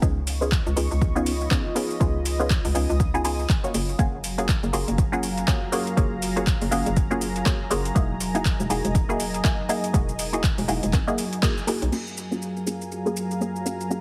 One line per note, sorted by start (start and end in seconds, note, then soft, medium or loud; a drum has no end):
0.02 0.61 C#2 loud
0.02 0.21 B3 medium
0.02 0.21 C#4 medium
0.02 0.21 D#4 medium
0.02 3.71 F4 medium
0.02 0.21 F4 medium
0.02 0.21 G#4 loud
0.02 3.71 D#5 medium
0.02 3.71 B5 medium
0.02 1.99 C#6 loud
0.02 kick loud
0.02 shaker soft
0.27 open hi-hat loud
0.27 shaker medium
0.41 0.50 B3 medium
0.41 0.50 C#4 medium
0.41 0.51 D#4 medium
0.41 0.51 F4 medium
0.41 0.51 G#4 medium
0.41 shaker soft
0.52 kick loud
0.52 clap loud
0.52 shaker soft
0.67 0.74 C#2 loud
0.67 shaker soft
0.76 0.88 C#2 medium
0.76 1.12 B3 medium
0.76 1.12 C#4 medium
0.76 1.13 D#4 medium
0.76 1.13 F4 medium
0.76 1.13 G#4 medium
0.76 open hi-hat loud
0.76 shaker medium
0.91 1.47 C#2 loud
0.91 shaker soft
1.02 kick loud
1.02 shaker soft
1.16 1.32 B3 loud
1.16 1.32 C#4 medium
1.16 1.32 D#4 medium
1.16 1.32 F4 medium
1.16 1.32 G#4 loud
1.16 shaker soft
1.26 open hi-hat loud
1.26 shaker medium
1.41 shaker soft
1.51 1.63 B3 medium
1.51 1.64 C#4 medium
1.51 1.64 D#4 medium
1.51 1.64 F4 medium
1.51 1.64 G#4 medium
1.51 kick loud
1.51 clap loud
1.51 shaker soft
1.75 1.98 B3 medium
1.75 1.98 C#4 medium
1.75 1.98 D#4 medium
1.75 1.98 F4 medium
1.75 1.99 G#4 medium
1.75 open hi-hat loud
1.75 shaker medium
1.91 shaker soft
2.00 2.59 C#2 loud
2.00 2.19 B3 medium
2.00 2.19 C#4 medium
2.00 2.19 D#4 medium
2.00 2.19 F4 medium
2.00 2.19 G#4 medium
2.00 3.72 D#6 loud
2.00 kick loud
2.00 shaker soft
2.25 open hi-hat loud
2.25 shaker medium
2.39 2.49 B3 medium
2.39 2.49 C#4 medium
2.39 2.49 D#4 medium
2.39 2.49 F4 medium
2.39 2.49 G#4 medium
2.39 shaker soft
2.50 kick loud
2.50 clap loud
2.50 shaker soft
2.65 2.73 C#2 loud
2.65 open hi-hat medium
2.65 shaker soft
2.75 2.86 C#2 medium
2.75 3.11 B3 medium
2.75 3.11 C#4 medium
2.75 3.11 D#4 medium
2.75 3.11 F4 medium
2.75 3.11 G#4 medium
2.75 open hi-hat loud
2.75 shaker medium
2.90 3.45 C#2 loud
2.90 shaker soft
3.00 kick loud
3.00 shaker soft
3.14 3.22 B3 loud
3.14 3.22 C#4 medium
3.14 3.23 D#4 medium
3.14 3.23 F4 medium
3.14 3.23 G#4 loud
3.14 shaker soft
3.24 3.43 B3 medium
3.24 3.43 C#4 medium
3.24 3.43 D#4 medium
3.24 3.43 F4 medium
3.24 3.43 G#4 loud
3.24 open hi-hat loud
3.24 shaker medium
3.39 shaker soft
3.50 kick loud
3.50 clap loud
3.50 shaker soft
3.63 3.96 A#3 medium
3.63 3.96 C#4 medium
3.63 3.97 F4 medium
3.63 3.97 F#4 medium
3.63 3.97 C#5 medium
3.63 shaker soft
3.74 3.94 F#1 loud
3.74 11.88 F#3 medium
3.74 7.92 F5 medium
3.74 11.88 G#5 medium
3.74 11.88 A#5 medium
3.74 open hi-hat loud
3.74 shaker medium
3.89 shaker soft
3.99 4.58 F#1 loud
3.99 4.17 A#3 medium
3.99 4.17 C#4 medium
3.99 4.18 F4 medium
3.99 4.18 F#4 medium
3.99 4.18 G#4 loud
3.99 kick loud
3.99 closed hi-hat soft
3.99 shaker soft
4.24 open hi-hat loud
4.24 shaker medium
4.38 4.47 A#3 medium
4.38 4.47 C#4 medium
4.38 4.47 F4 medium
4.38 4.47 F#4 medium
4.38 4.48 G#4 medium
4.38 closed hi-hat medium
4.38 shaker soft
4.49 kick loud
4.49 clap loud
4.49 closed hi-hat medium
4.49 shaker soft
4.63 4.71 F#1 loud
4.63 shaker soft
4.73 4.84 F#1 medium
4.73 5.09 A#3 medium
4.73 5.09 C#4 medium
4.73 5.09 F4 medium
4.73 5.09 F#4 medium
4.73 5.10 G#4 medium
4.73 open hi-hat loud
4.73 shaker medium
4.88 5.44 F#1 loud
4.88 closed hi-hat medium
4.88 shaker soft
4.98 kick loud
4.98 closed hi-hat soft
4.98 shaker soft
5.12 5.28 A#3 loud
5.12 5.28 C#4 medium
5.12 5.29 F4 medium
5.12 5.29 F#4 medium
5.12 5.29 G#4 loud
5.12 shaker soft
5.23 open hi-hat loud
5.23 shaker medium
5.38 closed hi-hat medium
5.38 shaker soft
5.47 5.60 A#3 medium
5.47 5.60 C#4 medium
5.47 5.60 F4 medium
5.47 5.61 F#4 medium
5.47 5.61 G#4 medium
5.47 kick loud
5.47 clap loud
5.47 closed hi-hat soft
5.47 shaker soft
5.72 5.95 A#3 medium
5.72 5.95 C#4 medium
5.72 5.95 F4 medium
5.72 5.95 F#4 medium
5.72 5.95 G#4 medium
5.72 open hi-hat loud
5.72 shaker medium
5.87 closed hi-hat medium
5.87 shaker soft
5.97 6.56 F#1 loud
5.97 6.16 A#3 medium
5.97 6.16 C#4 medium
5.97 6.16 F4 medium
5.97 6.16 F#4 medium
5.97 6.16 G#4 medium
5.97 kick loud
5.97 closed hi-hat medium
5.97 shaker soft
6.22 open hi-hat loud
6.22 shaker medium
6.36 6.45 A#3 medium
6.36 6.45 C#4 medium
6.36 6.46 F4 medium
6.36 6.46 F#4 medium
6.36 6.46 G#4 medium
6.36 closed hi-hat medium
6.36 shaker soft
6.47 kick loud
6.47 clap loud
6.47 closed hi-hat soft
6.47 shaker soft
6.61 6.69 F#1 loud
6.61 open hi-hat medium
6.61 shaker soft
6.71 6.83 F#1 medium
6.71 7.07 A#3 medium
6.71 7.08 C#4 medium
6.71 7.08 F4 medium
6.71 7.08 F#4 medium
6.71 7.08 G#4 medium
6.71 open hi-hat loud
6.71 shaker medium
6.86 7.42 F#1 loud
6.86 closed hi-hat medium
6.86 shaker soft
6.96 kick loud
6.96 closed hi-hat medium
6.96 shaker soft
7.11 7.27 A#3 loud
7.11 7.27 C#4 medium
7.11 7.27 F4 loud
7.11 7.27 F#4 medium
7.11 7.27 G#4 loud
7.11 shaker soft
7.21 open hi-hat loud
7.21 shaker medium
7.36 closed hi-hat medium
7.36 shaker soft
7.46 7.58 A#3 medium
7.46 7.59 C#4 medium
7.46 7.59 F4 medium
7.46 7.59 F#4 medium
7.46 7.59 G#4 loud
7.46 kick loud
7.46 clap loud
7.46 closed hi-hat soft
7.46 shaker soft
7.70 7.91 F#1 loud
7.70 7.93 A#3 medium
7.70 7.93 C#4 medium
7.70 7.93 F4 medium
7.70 7.93 F#4 medium
7.70 7.94 G#4 loud
7.70 open hi-hat loud
7.70 shaker medium
7.85 closed hi-hat medium
7.85 shaker soft
7.95 8.54 E1 loud
7.95 8.14 A#3 medium
7.95 8.14 D#4 medium
7.95 8.14 E4 medium
7.95 8.14 F#4 medium
7.95 8.14 G#4 loud
7.95 11.88 D#5 medium
7.95 kick loud
7.95 closed hi-hat medium
7.95 shaker soft
8.20 open hi-hat loud
8.20 shaker medium
8.35 8.44 A#3 medium
8.35 8.44 D#4 medium
8.35 8.44 E4 medium
8.35 8.44 F#4 medium
8.35 8.44 G#4 medium
8.35 closed hi-hat medium
8.35 shaker soft
8.45 kick loud
8.45 clap loud
8.45 closed hi-hat medium
8.45 shaker soft
8.60 8.68 E1 loud
8.60 shaker soft
8.70 8.81 E1 medium
8.70 9.06 A#3 medium
8.70 9.06 D#4 medium
8.70 9.06 E4 medium
8.70 9.06 F#4 medium
8.70 9.06 G#4 medium
8.70 open hi-hat medium
8.70 shaker medium
8.85 9.40 E1 loud
8.85 closed hi-hat medium
8.85 shaker soft
8.95 kick loud
8.95 closed hi-hat medium
8.95 shaker soft
9.09 9.25 A#3 loud
9.09 9.25 D#4 medium
9.09 9.25 E4 medium
9.09 9.25 F#4 medium
9.09 9.26 G#4 loud
9.09 shaker soft
9.20 open hi-hat loud
9.20 shaker medium
9.34 closed hi-hat medium
9.34 shaker soft
9.44 9.57 A#3 medium
9.44 9.57 D#4 medium
9.44 9.57 E4 medium
9.44 9.57 F#4 medium
9.44 9.57 G#4 medium
9.44 kick loud
9.44 clap loud
9.44 closed hi-hat medium
9.44 shaker soft
9.69 9.91 A#3 medium
9.69 9.92 D#4 medium
9.69 9.92 E4 medium
9.69 9.92 F#4 medium
9.69 9.92 G#4 loud
9.69 open hi-hat loud
9.69 shaker medium
9.84 closed hi-hat medium
9.84 shaker soft
9.94 10.53 E1 loud
9.94 10.12 A#3 medium
9.94 10.12 D#4 medium
9.94 10.13 E4 medium
9.94 10.13 F#4 medium
9.94 10.13 G#4 medium
9.94 kick loud
9.94 closed hi-hat medium
9.94 shaker soft
10.09 shaker soft
10.19 open hi-hat loud
10.19 shaker medium
10.33 10.42 A#3 medium
10.33 10.42 D#4 medium
10.33 10.42 E4 medium
10.33 10.42 F#4 medium
10.33 10.43 G#4 medium
10.33 closed hi-hat medium
10.33 shaker soft
10.44 kick loud
10.44 clap loud
10.44 closed hi-hat medium
10.44 shaker soft
10.58 10.66 E1 loud
10.58 open hi-hat medium
10.58 shaker soft
10.68 10.79 E1 medium
10.68 11.04 A#3 medium
10.68 11.04 D#4 medium
10.68 11.04 E4 medium
10.68 11.04 F#4 medium
10.68 11.05 G#4 medium
10.68 open hi-hat loud
10.68 shaker medium
10.83 10.93 E1 loud
10.83 closed hi-hat medium
10.83 shaker soft
10.93 11.04 G#1 loud
10.93 kick loud
10.93 clap medium
10.93 closed hi-hat medium
10.93 shaker soft
11.07 11.23 A#3 loud
11.07 11.24 D#4 medium
11.07 11.24 E4 medium
11.07 11.24 F#4 medium
11.07 11.24 G#4 loud
11.07 shaker soft
11.18 open hi-hat loud
11.18 shaker medium
11.33 closed hi-hat medium
11.33 shaker soft
11.42 11.55 A#3 medium
11.42 11.55 D#4 medium
11.42 11.55 E4 medium
11.42 11.56 F#4 medium
11.42 11.56 G#4 loud
11.42 kick loud
11.42 clap loud
11.42 closed hi-hat medium
11.42 shaker soft
11.58 shaker soft
11.67 11.90 A#3 medium
11.67 11.90 D#4 medium
11.67 11.90 E4 medium
11.67 11.90 F#4 medium
11.67 11.90 G#4 medium
11.67 open hi-hat loud
11.67 shaker medium
11.82 11.90 B1 medium
11.82 closed hi-hat medium
11.82 shaker soft
11.92 14.01 F#3 medium
11.92 12.11 A#3 medium
11.92 12.11 C#4 medium
11.92 12.11 F4 medium
11.92 12.11 F#4 medium
11.92 12.11 G#4 medium
11.92 14.01 F5 medium
11.92 14.01 G#5 medium
11.92 14.01 A#5 medium
11.92 crash medium
11.92 shaker soft
12.07 shaker soft
12.17 shaker medium
12.31 12.40 A#3 medium
12.31 12.41 C#4 medium
12.31 12.41 F4 medium
12.31 12.41 F#4 medium
12.31 12.41 G#4 medium
12.31 shaker soft
12.42 shaker soft
12.57 shaker soft
12.66 13.02 A#3 medium
12.66 13.03 C#4 medium
12.66 13.03 F4 medium
12.66 13.03 F#4 medium
12.66 13.03 G#4 medium
12.66 shaker medium
12.82 shaker soft
12.92 shaker soft
13.06 13.22 A#3 loud
13.06 13.22 C#4 medium
13.06 13.22 F4 medium
13.06 13.22 F#4 medium
13.06 13.22 G#4 loud
13.06 shaker soft
13.17 shaker medium
13.31 shaker soft
13.41 13.54 A#3 medium
13.41 13.54 C#4 medium
13.41 13.54 F4 medium
13.41 13.54 F#4 medium
13.41 13.54 G#4 medium
13.41 shaker soft
13.56 shaker soft
13.65 13.88 A#3 medium
13.65 13.88 C#4 medium
13.65 13.88 F4 medium
13.65 13.88 F#4 medium
13.65 13.89 G#4 medium
13.65 shaker medium
13.81 shaker soft
13.90 14.01 A#3 medium
13.90 14.01 C#4 medium
13.90 14.01 F4 medium
13.90 14.01 F#4 medium
13.90 14.01 G#4 medium
13.90 shaker soft